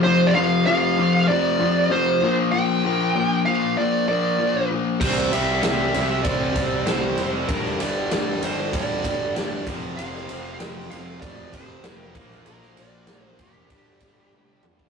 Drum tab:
CC |----------------|----------------|x---------------|----------------|
RD |----------------|----------------|--x-x-x-x-x-x-x-|x-x-x-x-x-x-x-x-|
SD |----------------|----------------|-o--o-------o---|-o--o-------o---|
T1 |----------------|----------------|----------------|----------------|
T2 |----------------|----------------|----------------|----------------|
BD |----------------|----------------|o-------o-o-----|o-------o-o---o-|

CC |----------------|----------------|
RD |x-x-x-x-x-x-x-x-|x-x-x-x-x-x-----|
SD |-o--o-------o--o|-o--o-----------|
T1 |----------------|------------o---|
T2 |----------------|--------------o-|
BD |--------o-o---o-|------o-o-o----o|